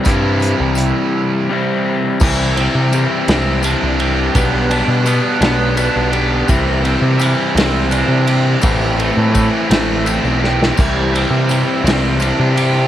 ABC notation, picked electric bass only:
X:1
M:6/8
L:1/16
Q:3/8=56
K:Clyd
V:1 name="Picked electric bass" clef=bass
G,,3 C,,2 z6 z | C,,3 C,2 z C,,3 C,,3 | B,,,3 B,,2 z B,,,3 B,,,3 | C,,3 C,2 z C,,3 C,3 |
A,,,3 A,,2 z A,,,3 B,,,3 | C,,3 C,2 z C,,3 C,3 |]